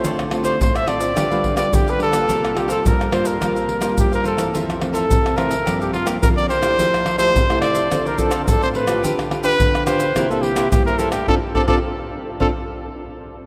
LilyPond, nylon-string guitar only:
\new Staff \with { instrumentName = "Nylon-string guitar" } { \time 4/4 \key f \major \tempo 4 = 107 << { <a c' f'>8 <a c' f'>8. r16 <a c' f'>8 <g b f'>16 <g b f'>8 <g b f'>4 <g bes f'>16~ | <g bes f'>8 <g bes f'>4 <g bes f'>8 <g bes f'>8. <g bes f'>4 <e a c'>16~ | <e a c'>8 <e a c'>4 <e a c'>16 r16 <f bes c'>8. <f bes c'>16 <f bes c'>8 r16 <a e' g'>16~ | <a e' g'>8 r16 <a e' g'>8 <a e' g'>8. <c' f' a'>16 r16 <c' f' a'>8 r16 <c' f' a'>8 <b f' g'>16~ |
<b f' g'>8 <b f' g'>4 <b f' g'>16 r16 <bes e' g'>16 <bes e' g'>8 <bes e' g'>16 <bes e' g'>8 r16 <a d' g'>16 | <c' d' f'>16 r16 <c' d' f'>16 <c' d' f'>16 r4 <c' d' f'>16 r4. r16 | } \\ { d4 a,4 d4 d4 | c4 g,4 c4 g,4 | f,4 c4 g,4 d4 | f4 c4 d4 a,4 |
d4 d4 c4 g,4 | r1 | } >> }